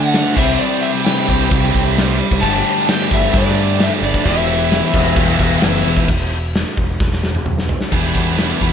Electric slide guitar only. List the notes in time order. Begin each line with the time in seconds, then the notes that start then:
Already playing: F#5
0.37 E5
0.59 D5
0.81 E5
1.05 G5
2.41 A5
2.89 G5
3.13 E5
3.37 D5
3.82 E5
4.05 D5
4.29 E5